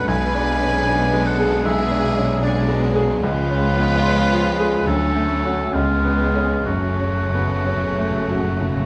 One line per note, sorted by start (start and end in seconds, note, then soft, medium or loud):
0.00 0.10 F#2 soft
0.00 0.10 F#3 medium
0.00 0.10 C#4 medium
0.00 0.10 D4 medium
0.00 0.10 B4 medium
0.07 3.18 B1 medium
0.07 1.61 B1 medium
0.07 3.18 B2 medium
0.07 2.38 G#3 medium
0.07 2.38 B3 medium
0.07 2.38 D4 medium
0.07 1.23 B4 medium
0.07 1.28 G#5 loud
0.35 0.76 D4 medium
0.60 0.87 C#4 soft
0.87 1.28 D4 medium
1.13 1.55 G#3 medium
1.26 1.65 A4 medium
1.26 1.65 F#5 medium
1.40 1.81 G#4 medium
1.65 3.19 B1 medium
1.65 2.41 G#4 medium
1.65 2.45 E5 medium
1.91 2.32 D4 medium
2.17 2.42 C#4 soft
2.42 3.21 G#3 medium
2.42 3.21 B3 medium
2.42 2.85 D4 medium
2.42 3.22 D4 medium
2.42 2.81 G#4 medium
2.42 2.82 D5 medium
2.68 3.11 G#3 medium
2.82 3.22 F#3 medium
2.96 3.23 G#4 medium
3.22 4.83 C#2 medium
3.22 4.86 F3 medium
3.22 4.83 G#3 medium
3.22 4.87 G#3 medium
3.22 4.85 C#4 medium
3.22 4.83 F4 medium
3.22 4.83 B4 loud
3.50 3.94 C#4 medium
3.78 4.05 B3 soft
4.06 4.49 C#4 medium
4.33 4.76 F3 medium
4.60 4.87 G#4 medium
4.86 5.74 D2 medium
4.86 5.72 D2 medium
4.86 5.72 F#3 medium
4.86 5.75 A3 medium
4.86 5.74 C#4 medium
4.86 5.73 C#4 medium
4.86 5.75 A4 medium
5.15 5.62 A3 soft
5.45 5.72 C#4 soft
5.45 5.72 F#4 medium
5.73 6.67 C#2 medium
5.73 6.65 C#2 medium
5.73 6.65 C#3 medium
5.73 6.64 G#3 medium
5.73 6.67 G#3 medium
5.73 6.67 B3 medium
5.73 6.66 C#4 medium
5.73 6.65 F4 medium
6.05 6.54 B3 medium
6.35 6.64 C#4 soft
6.35 6.64 G#4 medium
6.66 8.86 F#1 medium
6.66 6.75 F#2 soft
6.66 7.54 F#2 medium
6.66 8.57 F#2 medium
6.66 8.86 C#3 medium
6.66 8.86 F#3 soft
6.66 8.86 A3 medium
6.66 8.86 C#4 medium
6.66 8.86 F#4 medium
6.76 6.83 F#2 soft
6.93 7.01 F#2 soft
7.00 7.10 F#2 soft
7.00 7.53 C#4 soft
7.11 7.19 F#2 soft
7.20 7.28 F#2 soft
7.29 7.37 F#2 soft
7.33 7.66 B3 soft
7.38 7.46 F#2 soft
7.47 7.55 F#2 soft
7.56 7.64 F#2 soft
7.65 7.73 F#2 soft
7.65 8.86 F#2 medium
7.65 8.18 C#4 soft
7.75 7.82 F#2 soft
7.83 7.91 F#2 soft
7.92 8.01 F#2 medium
7.98 8.09 F#2 medium
7.98 8.49 A3 medium
8.10 8.18 F#2 soft
8.19 8.26 F#2 soft
8.27 8.34 F#2 medium
8.27 8.79 F#4 soft
8.36 8.42 F#2 soft
8.44 8.51 F#2 soft
8.52 8.59 F#2 soft
8.61 8.68 F#2 medium
8.61 8.86 C#3 soft
8.69 8.75 F#2 medium
8.77 8.84 F#2 medium